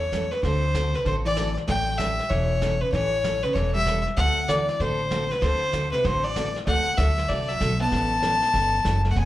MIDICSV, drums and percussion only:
0, 0, Header, 1, 2, 480
1, 0, Start_track
1, 0, Tempo, 311688
1, 671, Time_signature, 4, 2, 24, 8
1, 14248, End_track
2, 0, Start_track
2, 0, Title_t, "Drums"
2, 189, Note_on_c, 9, 36, 25
2, 197, Note_on_c, 9, 38, 65
2, 197, Note_on_c, 9, 44, 57
2, 343, Note_off_c, 9, 36, 0
2, 351, Note_off_c, 9, 38, 0
2, 351, Note_off_c, 9, 44, 0
2, 492, Note_on_c, 9, 38, 39
2, 646, Note_off_c, 9, 38, 0
2, 664, Note_on_c, 9, 36, 25
2, 670, Note_on_c, 9, 25, 54
2, 670, Note_on_c, 9, 38, 51
2, 818, Note_off_c, 9, 36, 0
2, 824, Note_off_c, 9, 38, 0
2, 1145, Note_on_c, 9, 36, 22
2, 1146, Note_on_c, 9, 38, 75
2, 1146, Note_on_c, 9, 44, 63
2, 1299, Note_off_c, 9, 36, 0
2, 1300, Note_off_c, 9, 38, 0
2, 1300, Note_off_c, 9, 44, 0
2, 1449, Note_on_c, 9, 38, 45
2, 1603, Note_off_c, 9, 38, 0
2, 1627, Note_on_c, 9, 36, 21
2, 1629, Note_off_c, 9, 25, 0
2, 1629, Note_on_c, 9, 25, 52
2, 1629, Note_on_c, 9, 38, 44
2, 1781, Note_off_c, 9, 36, 0
2, 1783, Note_off_c, 9, 38, 0
2, 2104, Note_on_c, 9, 38, 66
2, 2104, Note_on_c, 9, 44, 52
2, 2108, Note_on_c, 9, 36, 18
2, 2258, Note_off_c, 9, 38, 0
2, 2258, Note_off_c, 9, 44, 0
2, 2262, Note_off_c, 9, 36, 0
2, 2418, Note_on_c, 9, 38, 38
2, 2572, Note_off_c, 9, 38, 0
2, 2592, Note_on_c, 9, 36, 25
2, 2596, Note_off_c, 9, 25, 0
2, 2596, Note_on_c, 9, 25, 51
2, 2596, Note_on_c, 9, 38, 50
2, 2746, Note_off_c, 9, 36, 0
2, 2750, Note_off_c, 9, 38, 0
2, 3070, Note_on_c, 9, 36, 27
2, 3071, Note_on_c, 9, 38, 70
2, 3071, Note_on_c, 9, 44, 61
2, 3224, Note_off_c, 9, 36, 0
2, 3225, Note_off_c, 9, 38, 0
2, 3225, Note_off_c, 9, 44, 0
2, 3374, Note_on_c, 9, 38, 42
2, 3528, Note_off_c, 9, 38, 0
2, 3550, Note_on_c, 9, 36, 23
2, 3554, Note_off_c, 9, 25, 0
2, 3554, Note_on_c, 9, 25, 56
2, 3554, Note_on_c, 9, 38, 42
2, 3704, Note_off_c, 9, 36, 0
2, 3708, Note_off_c, 9, 38, 0
2, 4029, Note_on_c, 9, 36, 25
2, 4034, Note_on_c, 9, 38, 69
2, 4034, Note_on_c, 9, 44, 59
2, 4183, Note_off_c, 9, 36, 0
2, 4188, Note_off_c, 9, 38, 0
2, 4188, Note_off_c, 9, 44, 0
2, 4509, Note_on_c, 9, 36, 24
2, 4516, Note_off_c, 9, 25, 0
2, 4516, Note_on_c, 9, 25, 49
2, 4516, Note_on_c, 9, 38, 50
2, 4663, Note_off_c, 9, 36, 0
2, 4670, Note_off_c, 9, 38, 0
2, 4989, Note_on_c, 9, 36, 26
2, 4994, Note_on_c, 9, 38, 77
2, 4994, Note_on_c, 9, 44, 66
2, 5143, Note_off_c, 9, 36, 0
2, 5148, Note_off_c, 9, 38, 0
2, 5148, Note_off_c, 9, 44, 0
2, 5297, Note_on_c, 9, 38, 39
2, 5451, Note_off_c, 9, 38, 0
2, 5468, Note_on_c, 9, 36, 23
2, 5473, Note_off_c, 9, 25, 0
2, 5473, Note_on_c, 9, 25, 55
2, 5473, Note_on_c, 9, 38, 43
2, 5622, Note_off_c, 9, 36, 0
2, 5627, Note_off_c, 9, 38, 0
2, 5948, Note_on_c, 9, 36, 24
2, 5953, Note_on_c, 9, 38, 72
2, 5953, Note_on_c, 9, 44, 61
2, 6102, Note_off_c, 9, 36, 0
2, 6107, Note_off_c, 9, 38, 0
2, 6107, Note_off_c, 9, 44, 0
2, 6253, Note_on_c, 9, 38, 38
2, 6407, Note_off_c, 9, 38, 0
2, 6430, Note_on_c, 9, 36, 25
2, 6435, Note_off_c, 9, 25, 0
2, 6435, Note_on_c, 9, 25, 52
2, 6435, Note_on_c, 9, 38, 50
2, 6584, Note_off_c, 9, 36, 0
2, 6589, Note_off_c, 9, 38, 0
2, 6909, Note_on_c, 9, 36, 23
2, 6912, Note_on_c, 9, 38, 79
2, 6912, Note_on_c, 9, 44, 65
2, 7063, Note_off_c, 9, 36, 0
2, 7066, Note_off_c, 9, 38, 0
2, 7066, Note_off_c, 9, 44, 0
2, 7215, Note_on_c, 9, 38, 41
2, 7369, Note_off_c, 9, 38, 0
2, 7391, Note_on_c, 9, 36, 21
2, 7397, Note_off_c, 9, 25, 0
2, 7397, Note_on_c, 9, 25, 41
2, 7397, Note_on_c, 9, 38, 45
2, 7545, Note_off_c, 9, 36, 0
2, 7551, Note_off_c, 9, 38, 0
2, 7870, Note_on_c, 9, 38, 74
2, 7870, Note_on_c, 9, 44, 46
2, 7871, Note_on_c, 9, 36, 19
2, 8024, Note_off_c, 9, 38, 0
2, 8024, Note_off_c, 9, 44, 0
2, 8025, Note_off_c, 9, 36, 0
2, 8178, Note_on_c, 9, 38, 41
2, 8332, Note_off_c, 9, 38, 0
2, 8350, Note_on_c, 9, 36, 29
2, 8353, Note_off_c, 9, 25, 0
2, 8353, Note_on_c, 9, 25, 58
2, 8353, Note_on_c, 9, 38, 49
2, 8504, Note_off_c, 9, 36, 0
2, 8507, Note_off_c, 9, 38, 0
2, 8824, Note_on_c, 9, 38, 68
2, 8824, Note_on_c, 9, 44, 71
2, 8829, Note_on_c, 9, 36, 29
2, 8978, Note_off_c, 9, 38, 0
2, 8978, Note_off_c, 9, 44, 0
2, 8983, Note_off_c, 9, 36, 0
2, 9143, Note_on_c, 9, 38, 44
2, 9297, Note_off_c, 9, 38, 0
2, 9311, Note_off_c, 9, 25, 0
2, 9311, Note_on_c, 9, 25, 49
2, 9311, Note_on_c, 9, 36, 25
2, 9311, Note_on_c, 9, 38, 45
2, 9465, Note_off_c, 9, 36, 0
2, 9465, Note_off_c, 9, 38, 0
2, 9793, Note_on_c, 9, 36, 20
2, 9795, Note_on_c, 9, 38, 74
2, 9795, Note_on_c, 9, 44, 58
2, 9947, Note_off_c, 9, 36, 0
2, 9949, Note_off_c, 9, 38, 0
2, 9949, Note_off_c, 9, 44, 0
2, 10101, Note_on_c, 9, 38, 41
2, 10255, Note_off_c, 9, 38, 0
2, 10272, Note_off_c, 9, 25, 0
2, 10272, Note_on_c, 9, 25, 58
2, 10272, Note_on_c, 9, 36, 26
2, 10272, Note_on_c, 9, 38, 54
2, 10426, Note_off_c, 9, 36, 0
2, 10426, Note_off_c, 9, 38, 0
2, 10745, Note_on_c, 9, 38, 76
2, 10745, Note_on_c, 9, 44, 58
2, 10751, Note_on_c, 9, 36, 30
2, 10899, Note_off_c, 9, 38, 0
2, 10899, Note_off_c, 9, 44, 0
2, 10905, Note_off_c, 9, 36, 0
2, 11052, Note_on_c, 9, 38, 46
2, 11206, Note_off_c, 9, 38, 0
2, 11232, Note_off_c, 9, 25, 0
2, 11232, Note_on_c, 9, 25, 53
2, 11232, Note_on_c, 9, 38, 45
2, 11234, Note_on_c, 9, 36, 24
2, 11386, Note_off_c, 9, 38, 0
2, 11388, Note_off_c, 9, 36, 0
2, 11714, Note_on_c, 9, 36, 21
2, 11719, Note_on_c, 9, 38, 72
2, 11719, Note_on_c, 9, 44, 61
2, 11868, Note_off_c, 9, 36, 0
2, 11873, Note_off_c, 9, 38, 0
2, 11873, Note_off_c, 9, 44, 0
2, 12019, Note_on_c, 9, 38, 42
2, 12173, Note_off_c, 9, 38, 0
2, 12193, Note_off_c, 9, 25, 0
2, 12193, Note_on_c, 9, 25, 53
2, 12193, Note_on_c, 9, 36, 20
2, 12193, Note_on_c, 9, 38, 48
2, 12347, Note_off_c, 9, 36, 0
2, 12347, Note_off_c, 9, 38, 0
2, 12666, Note_on_c, 9, 38, 74
2, 12666, Note_on_c, 9, 44, 62
2, 12669, Note_on_c, 9, 36, 26
2, 12820, Note_off_c, 9, 38, 0
2, 12820, Note_off_c, 9, 44, 0
2, 12823, Note_off_c, 9, 36, 0
2, 12968, Note_on_c, 9, 38, 42
2, 13122, Note_off_c, 9, 38, 0
2, 13146, Note_off_c, 9, 25, 0
2, 13146, Note_on_c, 9, 25, 51
2, 13146, Note_on_c, 9, 38, 44
2, 13147, Note_on_c, 9, 36, 22
2, 13300, Note_off_c, 9, 38, 0
2, 13301, Note_off_c, 9, 36, 0
2, 13627, Note_on_c, 9, 36, 26
2, 13629, Note_on_c, 9, 38, 71
2, 13629, Note_on_c, 9, 44, 68
2, 13781, Note_off_c, 9, 36, 0
2, 13783, Note_off_c, 9, 38, 0
2, 13783, Note_off_c, 9, 44, 0
2, 13931, Note_on_c, 9, 38, 41
2, 14085, Note_off_c, 9, 38, 0
2, 14103, Note_off_c, 9, 25, 0
2, 14103, Note_on_c, 9, 25, 56
2, 14103, Note_on_c, 9, 38, 50
2, 14104, Note_on_c, 9, 36, 29
2, 14248, Note_off_c, 9, 25, 0
2, 14248, Note_off_c, 9, 36, 0
2, 14248, Note_off_c, 9, 38, 0
2, 14248, End_track
0, 0, End_of_file